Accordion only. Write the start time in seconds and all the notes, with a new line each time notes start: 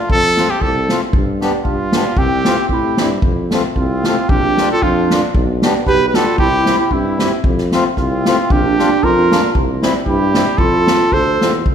0.38 A3 C4 F4
0.90 A3 C4 F4
1.41 B3 D4 G4
1.94 B3 D4 G4
2.46 A3 C4 F4
2.98 G3 C4 E4
3.52 A3 C4 F4
4.06 A3 C4 F4
4.58 A#3 D4 F4
5.11 A#3 D4 F4
5.64 B3 D4 G4
6.15 B3 D4 G4
6.66 C4 E4 G4
7.19 C4 E4 G4
7.73 A3 C4 F4
8.26 A3 C4 F4
8.79 A#3 D4 F4
9.31 A#3 D4 F4
9.83 G3 C4 E4
10.34 G3 C4 E4
10.86 A3 C4 F4
11.41 A3 C4 F4